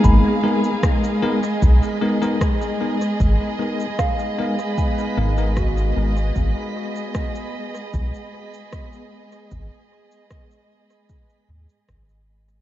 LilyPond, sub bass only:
\new Staff \with { instrumentName = "Sub bass" } { \clef bass \time 4/4 \key gis \dorian \tempo 4 = 76 gis,,8 r4. b,,8 r4. | gis,,8 r2 gis,,4 gis,,8 | gis,,8 r4. b,,8 r4. | gis,,8 r2 dis,8 gis,,4 | }